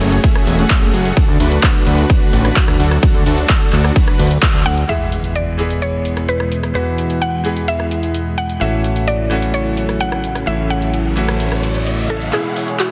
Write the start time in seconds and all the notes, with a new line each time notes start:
Already playing: C#3 A3 C#4 F#4 G#4 C#5
0.00 F#1, open hi-hat
0.12 closed hi-hat
0.24 A3 C#4 F#4 G#4 E5, kick, closed hi-hat, ride
0.35 cross-stick
0.47 E1, open hi-hat
0.59 A3 C#4 F#4 G#4 F#5, closed hi-hat
0.70 kick, clap, closed hi-hat, ride
0.82 F#1
0.93 F#1, open hi-hat
1.05 closed hi-hat
1.17 D3 F#3 D4 F#4, kick, closed hi-hat, ride
1.28 D2
1.40 D2 D4 F#4 B4, open hi-hat
1.52 closed hi-hat
1.63 kick, clap, closed hi-hat, ride
1.87 D2, open hi-hat
1.98 closed hi-hat
2.10 kick, closed hi-hat, ride
2.33 A1, open hi-hat
2.45 D4 F#4 B4, cross-stick, closed hi-hat
2.56 kick, clap, closed hi-hat, ride
2.68 D2, cross-stick
2.79 D2 D4 F#4 A4, open hi-hat
2.91 cross-stick, closed hi-hat
3.03 D4 F#4 A4, kick, closed hi-hat, ride
3.15 D2, closed hi-hat
3.26 D2 D4 F#4 A4, open hi-hat
3.38 closed hi-hat
3.49 kick, clap, closed hi-hat, ride
3.61 closed hi-hat
3.73 D2, clap, open hi-hat
3.84 cross-stick, closed hi-hat
3.96 F#4 B4, kick, closed hi-hat, ride
4.08 cross-stick, closed hi-hat
4.19 D2, open hi-hat
4.31 closed hi-hat
4.42 kick, clap, closed hi-hat, ride
4.54 D2, closed hi-hat
4.66 D2 F#5, open hi-hat
4.77 closed hi-hat
4.88 E2 B2 E3 G#3 B3 E4 G#4 E5, closed hi-hat, impact
5.12 closed hi-hat
5.24 closed hi-hat
5.36 D5, closed hi-hat
5.58 E3 G#3 B3 G#4, closed hi-hat
5.70 closed hi-hat
5.82 C#5, closed hi-hat
6.05 closed hi-hat
6.17 cross-stick, closed hi-hat
6.28 B4, closed hi-hat
6.40 cross-stick
6.52 closed hi-hat
6.63 cross-stick, closed hi-hat
6.74 E2 E3 G#3 B3 F#4 B4, closed hi-hat
6.98 closed hi-hat
7.10 closed hi-hat
7.22 F#5, closed hi-hat
7.44 E3 G#3 B3 G#4, closed hi-hat
7.56 closed hi-hat
7.68 E5, closed hi-hat
7.80 cross-stick
7.91 closed hi-hat
8.03 closed hi-hat
8.15 closed hi-hat
8.38 F#5, closed hi-hat
8.49 closed hi-hat
8.60 A1 C#3 E3 F#3 A3 C#4 F#4 E5, closed hi-hat, riser
8.84 closed hi-hat
8.96 closed hi-hat
9.08 D5, closed hi-hat
9.30 E3 A3 C#4 F#4, closed hi-hat
9.42 closed hi-hat
9.54 C#5, closed hi-hat
9.77 closed hi-hat
9.89 cross-stick, closed hi-hat
10.00 F#5, closed hi-hat
10.12 cross-stick
10.24 closed hi-hat
10.35 cross-stick, closed hi-hat
10.46 A1 E3 A3 C#4 E4 E5, closed hi-hat
10.70 F#5, closed hi-hat
10.82 closed hi-hat
10.94 closed hi-hat
11.16 E3 A3 C#4 F#4, closed hi-hat
11.29 cross-stick, closed hi-hat
11.40 closed hi-hat
11.52 cross-stick, closed hi-hat
11.63 closed hi-hat
11.75 closed hi-hat
11.87 closed hi-hat
12.09 E3 A3 C#4 A4, closed hi-hat
12.21 closed hi-hat
12.32 B2 E3 G#3 E4 G#4 B4, clap, closed hi-hat, riser
12.56 E4 G#4 C#5, open hi-hat
12.68 closed hi-hat
12.80 F#4, clap, closed hi-hat